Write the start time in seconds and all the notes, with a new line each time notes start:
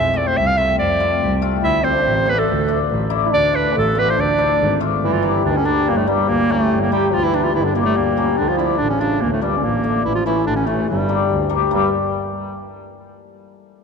Already playing: F2 E5
0.14 A3 C4 F4 D5
0.28 C5
0.36 C2 E5
0.47 F5
0.57 A3 C4 F4 E5
0.78 F2 D5
1.00 A3 C4 F4
1.21 C2
1.42 A3 C4 F4
1.63 D2 E4 E5
1.83 A3 C4 D4 F4 C5
1.97 D4
2.04 A1 C4
2.26 A3 D4 F4 B4
2.35 A3 A4
2.48 D2
2.68 A3 D4 F4
2.90 A1
3.10 A3 D4 E4
3.25 E4
3.31 D2 D4 D5
3.53 A3 D4 F4 B4
3.73 A1 A3
3.78 A4
3.95 A3 B3 D4 F4 B4
4.09 E4 C5
4.17 D2 D4 D5
4.38 A3 D4 E4
4.60 G#1
4.80 A3 D4 F4
5.02 G1 E3 E4
5.13 F4
5.22 G3 A#3 D4 E4
5.43 D2 D3 D4
5.57 C#4
5.65 G3 A#3 D4
5.86 G1 A#2 A#3
5.95 A2 A3
6.07 G2 G3 A#3 D4
6.28 D2 A#2 A#3
6.49 A2 G3 A3 A#3 C#4
6.70 G1
6.81 A#3
6.91 G3 A#3 E4 G4
7.10 D2 F3 F4 G4
7.23 E3 E4
7.33 G3 A#3 D4 E4
7.44 F4
7.55 G1 E3 E4
7.64 D3 D4
7.75 A#2 G3 A#3 D4
7.85 A2 A3
7.97 D2 A#2 A#3
8.17 G3 A#3 C#4
8.38 D2 D3 D4
8.48 F3 F4
8.58 F3 A3 D4 E4
8.78 A1 D3 D4
8.90 C#3 C#4
9.00 F3 A3 D4 F4
9.21 D2 A#2 A#3
9.32 A2 A3
9.41 G2 F3 G3 A3 D4
9.57 C#3 C#4
9.63 A1 A#2 A#3
9.83 D3 F3 A3 D4
10.05 A1 E3 E4
10.15 F3 F4
10.26 E3 A3 C#4 E4
10.45 A1 D3 D4
10.56 C#4
10.67 A2 E3 A3 C#4
10.81 A2
10.88 G1 G2 G3
11.09 G3 A#3 D4
11.30 D2
11.49 G3 A#3 D4
11.71 G1 G2 G3 A#3 D4